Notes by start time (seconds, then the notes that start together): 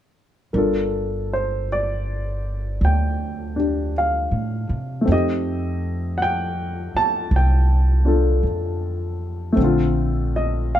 0.53 G1 D4 F4 A#4
0.58 A4
1.33 C5
1.72 D5
2.81 D2 G5
3.56 D4 G4
3.98 F5
4.31 A2
4.69 C3
5.01 A3 C4
5.07 F2 D#4
5.12 G4 D#5
6.18 F#5
6.22 G5
6.94 A5, muted upright bass stroke
7.31 C2
7.36 G5
8.05 D4 F4 A4
8.43 F2
9.53 A3 C4
9.57 A#1 D3
9.64 F4
10.36 D#5
10.75 F5